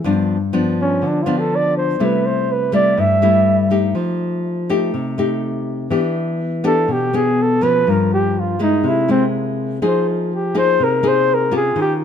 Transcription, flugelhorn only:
0.81 C#4
1.07 D4
1.23 F4
1.39 A4
1.56 D5
1.77 C5
2.05 B4
2.26 C5
2.52 B4
2.75 D5
3.00 E5
6.67 A4
6.92 G4
7.16 G#4
7.42 A4
7.63 B4
7.90 A#4
8.14 G4
8.39 F4
8.62 D#4
8.88 E4
9.11 C4
9.87 C5
10.10 D#4
10.35 G4
10.58 C5
10.84 A#4
11.08 C5
11.34 A#4
11.57 G#4
11.82 G4

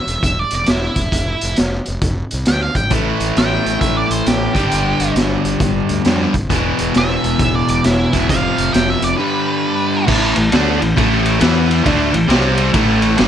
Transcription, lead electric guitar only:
Already playing: E5
0.24 E5
0.39 D5
0.55 D5
0.70 E4
2.48 G5
2.63 F5
2.77 G5
3.38 G5
3.81 E5
3.97 D5
4.12 C5
4.27 G4
6.97 E5
7.42 E5
7.55 D5
7.70 D5
7.84 E4
8.30 F5
8.73 G5
8.90 E5
9.04 D5
9.17 B4

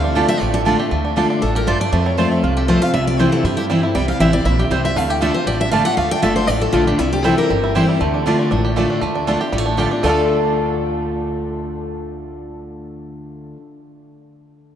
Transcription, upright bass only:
Already playing: D2
0.41 A1
0.92 D2
1.43 A1
1.93 F2
2.43 C2
2.94 C2
3.44 G2
3.95 C2
4.20 A1
4.45 A#1
4.70 C2
4.96 D2
5.46 A1
5.97 D2
6.23 G1
6.48 A1
6.73 A#1
6.99 C2
7.50 G1
8.01 D2
8.51 A1
9.02 D2
9.53 A1
10.03 D2

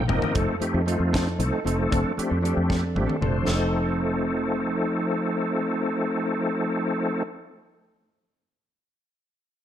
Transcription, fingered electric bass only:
0.10 F1
0.35 F1
0.61 muted fingered electric bass stroke
0.74 F2
1.00 F2
1.39 C2
1.65 F1
1.93 F1
2.18 muted fingered electric bass stroke
2.31 F2
2.57 F2
2.95 A1
3.22 F1
3.47 F1

